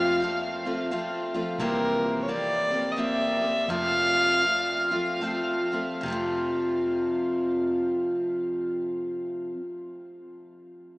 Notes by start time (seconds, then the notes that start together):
Already playing: F2 C3 F3 A3 C4 F4 F5
0.22 F3 A3 C4 F4
0.65 F3 A3 C4 F4
0.91 F3 A3 C4 F4
1.34 F3 A3 C4 F4
1.58 C2 C3 E3 A#3 C4 G4 A#4
2.22 C#5
2.28 E3 A#3 C4 G4 D5
2.71 A#3 C4 G4
2.92 D#5
2.96 E3 A#3 C4 G4 E5
3.41 A#3 C4 G4
3.68 F2 C3 F3 A3 C4 F4 F5
4.43 F3 A3 C4 F4
4.91 F3 A3 C4 F4
5.21 F3 A3 C4 F4
5.72 F3 A3 C4 F4
6.01 F1 F2 C3
6.06 F3 A3
6.10 C4 F4